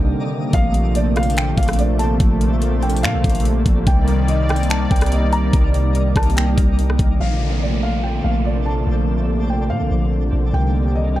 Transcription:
0.00 0.11 C2 loud
0.00 3.83 C3 medium
0.00 3.83 D3 medium
0.00 0.50 D#3 medium
0.00 0.50 G3 medium
0.00 3.83 A#3 medium
0.00 0.50 A#4 medium
0.00 0.50 D5 medium
0.00 0.50 D#5 medium
0.00 0.49 G5 medium
0.53 1.54 A#1 loud
0.53 3.84 F3 medium
0.53 3.84 A3 medium
0.53 3.83 C4 medium
0.53 3.83 A4 medium
0.53 7.16 D5 medium
0.53 0.93 F5 loud
0.53 kick loud
0.53 closed hi-hat medium
0.74 closed hi-hat medium
0.95 1.15 D5 medium
0.95 closed hi-hat medium
1.16 1.36 F5 medium
1.16 cross-stick loud
1.16 closed hi-hat soft
1.23 closed hi-hat soft
1.30 closed hi-hat medium
1.37 1.57 G5 medium
1.37 finger snap loud
1.37 closed hi-hat medium
1.58 2.18 A#1 loud
1.58 1.77 F5 medium
1.58 kick loud
1.58 closed hi-hat soft
1.63 closed hi-hat medium
1.68 cross-stick loud
1.68 closed hi-hat medium
1.73 closed hi-hat medium
1.79 1.98 D5 medium
1.79 closed hi-hat medium
1.99 2.19 A5 medium
1.99 closed hi-hat medium
2.20 3.05 A#1 loud
2.20 kick loud
2.20 closed hi-hat medium
2.41 closed hi-hat medium
2.62 closed hi-hat medium
2.83 3.02 G5 medium
2.83 closed hi-hat soft
2.90 closed hi-hat soft
2.97 closed hi-hat medium
3.03 3.15 A#2 loud
3.03 3.42 F5 medium
3.03 finger snap loud
3.03 closed hi-hat medium
3.14 3.24 A#1 loud
3.24 3.64 A#1 loud
3.24 kick loud
3.24 closed hi-hat soft
3.30 closed hi-hat medium
3.35 closed hi-hat medium
3.40 closed hi-hat medium
3.45 closed hi-hat medium
3.66 3.86 A#1 loud
3.66 kick loud
3.66 closed hi-hat medium
3.86 4.87 C2 loud
3.86 7.17 C3 medium
3.86 7.17 D#3 medium
3.86 7.17 G3 medium
3.86 7.17 A#3 medium
3.86 7.17 D#4 medium
3.86 7.17 D5 medium
3.86 4.26 G5 medium
3.86 kick loud
3.86 closed hi-hat medium
4.08 closed hi-hat medium
4.28 4.48 D#5 medium
4.28 closed hi-hat medium
4.49 4.69 G5 medium
4.49 cross-stick loud
4.49 closed hi-hat soft
4.56 closed hi-hat soft
4.63 closed hi-hat medium
4.70 4.90 A5 loud
4.70 finger snap loud
4.70 closed hi-hat medium
4.91 5.51 C2 loud
4.91 5.11 G5 medium
4.91 kick loud
4.91 closed hi-hat soft
4.96 closed hi-hat medium
5.01 cross-stick loud
5.01 closed hi-hat medium
5.06 closed hi-hat medium
5.12 5.32 D#5 medium
5.12 closed hi-hat medium
5.33 5.53 A#5 medium
5.33 closed hi-hat medium
5.53 6.13 C2 loud
5.53 kick loud
5.53 closed hi-hat medium
5.74 closed hi-hat medium
5.95 closed hi-hat medium
6.16 6.56 C2 loud
6.16 6.36 A5 medium
6.16 kick loud
6.16 cross-stick loud
6.16 closed hi-hat soft
6.16 open hi-hat soft
6.23 closed hi-hat soft
6.30 closed hi-hat medium
6.37 7.16 G5 medium
6.37 finger snap loud
6.37 closed hi-hat medium
6.58 6.98 C2 loud
6.58 kick loud
6.58 closed hi-hat medium
6.79 closed hi-hat medium
6.90 cross-stick medium
6.99 7.19 C2 loud
6.99 kick loud
6.99 closed hi-hat medium
7.20 8.20 A#1 loud
7.20 11.20 C3 medium
7.20 11.20 D3 medium
7.20 10.50 F3 medium
7.20 10.50 A3 medium
7.20 10.50 A#3 medium
7.20 10.50 C4 medium
7.20 10.50 A4 medium
7.20 10.50 D5 medium
7.20 7.60 F5 medium
7.20 downlifter medium
7.62 7.82 D5 medium
7.83 8.03 F5 medium
8.04 8.23 G5 medium
8.24 8.84 A#1 loud
8.24 8.44 F5 medium
8.45 8.65 D5 medium
8.66 8.86 A5 medium
8.87 9.72 A#1 loud
9.50 9.69 G5 medium
9.70 9.82 A#2 loud
9.70 10.09 F5 medium
9.81 9.90 A#1 loud
9.91 10.31 A#1 loud
10.33 10.53 A#1 loud
10.53 11.20 C2 loud
10.53 11.20 D#3 medium
10.53 11.20 G3 medium
10.53 11.20 A#3 medium
10.53 11.20 A#4 medium
10.53 11.20 D5 medium
10.53 11.20 D#5 medium
10.53 10.93 G5 medium
10.95 11.15 D#5 medium
11.16 11.20 G5 medium

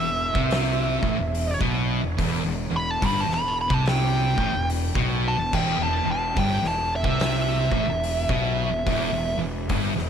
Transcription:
0.00 0.32 E1 medium
0.00 0.29 E2 medium
0.00 1.59 E5 loud
0.35 0.99 C2 loud
0.35 1.01 C3 loud
0.35 kick loud
0.51 snare loud
0.51 open hi-hat medium
1.03 1.17 A1 medium
1.03 1.18 A2 loud
1.03 kick loud
1.18 1.57 E1 medium
1.18 1.50 E2 medium
1.35 open hi-hat medium
1.61 1.99 B1 loud
1.61 2.01 B2 loud
1.61 kick loud
2.02 2.17 E1 medium
2.02 2.17 E2 medium
2.19 2.42 E1 loud
2.19 2.43 E2 loud
2.19 kick loud
2.19 open hi-hat medium
2.45 2.68 E1 medium
2.45 2.70 E2 medium
2.70 3.00 E1 medium
2.70 2.96 E2 medium
2.76 2.91 B5 loud
2.91 3.01 A5 loud
3.02 3.26 G1 loud
3.02 3.26 G2 loud
3.02 3.21 B5 medium
3.02 kick loud
3.02 open hi-hat medium
3.21 3.30 A5 medium
3.28 3.67 E1 medium
3.28 3.64 E2 medium
3.28 snare soft
3.34 3.55 B5 medium
3.48 3.55 A5 medium
3.61 3.74 B5 medium
3.70 4.33 C2 loud
3.70 4.36 C3 loud
3.70 kick loud
3.74 3.85 A5 loud
3.86 4.68 G5 loud
3.86 snare loud
3.86 open hi-hat medium
4.38 4.52 A1 medium
4.38 4.53 A2 loud
4.38 kick loud
4.54 4.92 E1 medium
4.54 4.85 E2 medium
4.70 open hi-hat medium
4.95 5.34 B1 loud
4.95 5.36 B2 loud
4.95 kick loud
5.28 5.53 A5 loud
5.37 5.52 E1 medium
5.37 5.53 E2 medium
5.53 5.77 E1 medium
5.53 5.78 E2 loud
5.53 5.81 G5 loud
5.53 kick loud
5.53 crash loud
5.78 6.02 E1 medium
5.78 6.04 E2 medium
5.83 6.09 A5 medium
6.04 6.34 E1 medium
6.04 6.30 E2 medium
6.11 6.37 A5 loud
6.36 6.60 G1 loud
6.36 6.61 G2 loud
6.36 6.65 G5 medium
6.36 kick loud
6.36 open hi-hat medium
6.62 7.01 E1 medium
6.62 6.98 E2 medium
6.62 snare soft
6.68 6.93 A5 medium
6.96 9.40 E5 loud
7.04 7.67 C2 loud
7.04 7.69 C3 loud
7.04 kick loud
7.19 snare loud
7.19 open hi-hat medium
7.72 7.86 A1 loud
7.72 7.86 A2 loud
7.72 kick loud
7.87 8.25 E1 medium
7.87 8.18 E2 medium
8.04 open hi-hat medium
8.29 8.68 B1 loud
8.29 8.69 B2 loud
8.29 kick loud
8.71 8.85 E1 medium
8.71 8.85 E2 medium
8.86 9.10 E1 loud
8.86 9.10 E2 loud
8.86 kick loud
8.86 open hi-hat medium
9.12 9.36 E1 medium
9.12 9.36 E2 medium
9.38 9.67 E1 medium
9.38 9.63 E2 medium
9.69 9.94 G1 loud
9.69 9.94 G2 loud
9.69 kick loud
9.69 open hi-hat medium
9.96 10.10 E1 medium
9.96 10.10 E2 medium
9.96 snare soft

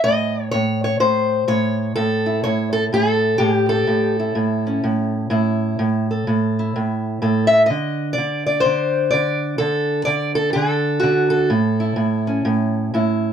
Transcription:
0.04 0.53 A2 medium
0.04 0.51 D#5 loud
0.51 1.00 A2 medium
0.51 0.83 C#5 medium
0.84 1.00 C#5 medium
1.00 1.47 A2 medium
1.00 1.48 C5 medium
1.48 1.96 A2 medium
1.48 1.95 C#5 loud
1.96 2.44 A2 medium
1.96 2.43 A4 medium
2.26 3.38 E4 soft
2.44 2.92 A2 medium
2.44 2.72 C#5 medium
2.73 2.84 A4 medium
2.93 3.39 A2 medium
2.93 3.56 A4 medium
3.38 3.87 A2 medium
3.38 3.56 G4 medium
3.56 3.68 G4 medium
3.69 5.12 A4 medium
3.87 4.35 A2 medium
4.19 5.30 E4 soft
4.35 4.83 A2 medium
4.67 5.77 C#4 soft
4.84 5.29 A2 medium
5.30 5.78 A2 medium
5.30 6.08 E4 soft
5.79 6.26 A2 medium
6.11 7.22 A4 soft
6.27 6.74 A2 medium
6.59 7.68 E4 soft
6.76 7.21 A2 medium
7.22 7.69 A2 medium
7.22 7.69 A4 soft
7.47 7.66 E5 loud
7.66 8.17 D3 medium
7.66 8.13 D#5 loud
8.13 8.45 D5 medium
8.18 8.65 D3 medium
8.46 9.09 D5 medium
8.60 9.10 C5 loud
8.65 9.12 D3 medium
9.11 9.59 D3 medium
9.11 9.58 D5 loud
9.58 10.05 D3 medium
9.58 10.05 A4 medium
10.05 10.54 D3 medium
10.05 10.35 D5 medium
10.35 10.52 A4 medium
10.53 11.02 D3 medium
10.53 11.29 A4 medium
11.00 11.50 D3 medium
11.00 11.48 F#4 medium
11.30 12.73 A4 medium
11.50 11.96 A2 medium
11.80 12.94 E4 medium
11.96 12.44 A2 medium
12.27 13.33 C#4 soft
12.45 12.92 A2 medium
12.94 13.33 A2 medium
12.94 13.33 E4 medium

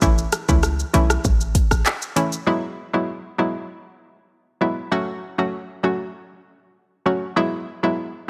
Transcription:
0.02 0.26 A1 loud
0.02 0.45 E3 loud
0.02 0.45 A3 medium
0.02 0.45 C#4 medium
0.02 0.45 E4 loud
0.02 kick loud
0.02 shaker medium
0.18 shaker medium
0.32 cross-stick loud
0.32 closed hi-hat medium
0.32 shaker medium
0.48 0.84 C#2 loud
0.48 0.90 E3 medium
0.48 0.90 A3 medium
0.48 0.90 C#4 medium
0.48 0.91 E4 medium
0.48 kick loud
0.48 shaker medium
0.63 cross-stick loud
0.63 shaker medium
0.79 shaker medium
0.93 1.18 B1 loud
0.93 1.22 E3 medium
0.93 1.22 A3 medium
0.93 1.22 C#4 medium
0.93 1.22 E4 medium
0.93 closed hi-hat medium
0.93 shaker medium
1.10 cross-stick loud
1.10 shaker medium
1.24 1.61 A1 loud
1.24 kick medium
1.24 shaker medium
1.41 shaker medium
1.55 kick loud
1.55 closed hi-hat medium
1.55 shaker medium
1.71 1.83 A1 medium
1.71 cross-stick loud
1.71 shaker medium
1.86 clap loud
1.86 shaker medium
2.02 shaker medium
2.16 2.35 E3 medium
2.16 2.35 A3 medium
2.16 2.35 C#4 medium
2.16 2.35 E4 medium
2.16 closed hi-hat medium
2.16 shaker medium
2.32 shaker medium
2.47 2.90 F#3 medium
2.47 2.90 G#3 medium
2.47 2.90 B3 medium
2.47 2.90 E4 medium
2.93 3.35 F#3 medium
2.93 3.35 G#3 medium
2.93 3.35 B3 medium
2.93 3.35 E4 medium
3.38 3.67 F#3 medium
3.38 3.67 G#3 medium
3.38 3.67 B3 medium
3.38 3.67 E4 medium
4.61 4.79 F#3 medium
4.61 4.79 G#3 medium
4.61 4.80 B3 medium
4.61 4.80 E4 medium
4.92 5.35 F#3 medium
4.92 5.35 A3 medium
4.92 5.35 C#4 medium
4.92 5.35 F#4 loud
5.38 5.80 F#3 medium
5.38 5.80 A3 medium
5.38 5.80 C#4 medium
5.38 5.80 F#4 medium
5.83 6.12 F#3 medium
5.83 6.12 A3 medium
5.83 6.12 C#4 medium
5.83 6.12 F#4 medium
7.06 7.24 F#3 medium
7.06 7.24 A3 medium
7.06 7.24 C#4 medium
7.06 7.25 F#4 medium
7.36 7.79 F#3 medium
7.36 7.79 G#3 medium
7.36 7.80 B3 medium
7.36 7.80 E4 loud
7.83 8.25 F#3 medium
7.83 8.25 G#3 medium
7.83 8.25 B3 medium
7.83 8.25 E4 medium

